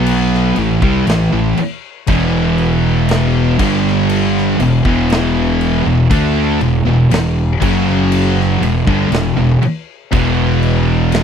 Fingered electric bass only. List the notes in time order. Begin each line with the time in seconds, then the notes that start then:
Already playing: B1
0.57 A1
0.82 C2
1.07 A1
1.32 A1
1.58 muted fingered electric bass stroke
2.08 E1
3.59 G1
4.59 E1
4.85 E1
5.85 E1
6.11 D2
6.59 E1
6.85 E1
7.10 E1
7.62 F#1
8.61 E1
8.87 G1
9.10 E1
9.36 E1
9.61 muted fingered electric bass stroke
10.13 E1